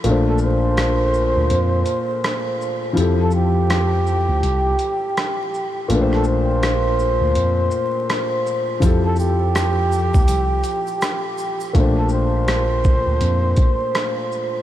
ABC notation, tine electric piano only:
X:1
M:4/4
L:1/16
Q:"Swing 16ths" 1/4=82
K:Bblyd
V:1 name="Tine electric piano" clef=bass
B,,,6- B,,, D,, F,,2 z6 | F,,6- F,, D,, C,,2 z6 | B,,,6- B,,, D,, F,,2 z6 | F,,6- F,, D,, C,,2 z6 |
B,,,6- B,,, D,, F,,2 z6 |]